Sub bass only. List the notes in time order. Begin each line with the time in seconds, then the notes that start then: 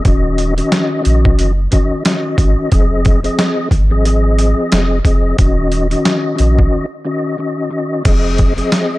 0.06 D#1
1.06 A#1
1.39 F#1
2.38 G#1
2.72 F1
3.71 G#1
4.73 F1
5.05 F1
5.39 D#1
6.40 A#1
8.06 F1